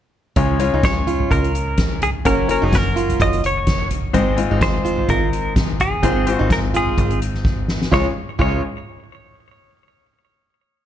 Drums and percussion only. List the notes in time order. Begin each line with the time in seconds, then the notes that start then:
0.36 kick, closed hi-hat
0.60 closed hi-hat
0.83 kick, snare, closed hi-hat
1.08 closed hi-hat
1.20 floor tom
1.31 kick, closed hi-hat
1.44 closed hi-hat
1.55 closed hi-hat
1.78 kick, snare, closed hi-hat
2.02 closed hi-hat, floor tom
2.25 kick, closed hi-hat
2.49 closed hi-hat
2.72 kick, snare, closed hi-hat
2.97 closed hi-hat
3.10 closed hi-hat, floor tom
3.20 kick, closed hi-hat
3.33 closed hi-hat
3.44 closed hi-hat
3.67 kick, snare, closed hi-hat
3.91 closed hi-hat, floor tom
4.14 kick, closed hi-hat
4.38 closed hi-hat
4.61 kick, snare, closed hi-hat
4.86 closed hi-hat
4.98 floor tom
5.09 kick, closed hi-hat
5.33 closed hi-hat
5.56 kick, snare, closed hi-hat
5.80 closed hi-hat, floor tom
6.03 kick, closed hi-hat
6.27 closed hi-hat
6.50 kick, snare, closed hi-hat
6.74 closed hi-hat
6.87 floor tom
6.98 kick, closed hi-hat
7.11 closed hi-hat
7.22 closed hi-hat
7.34 snare
7.45 kick, snare
7.68 snare
7.82 snare
7.92 kick, snare
8.39 kick, crash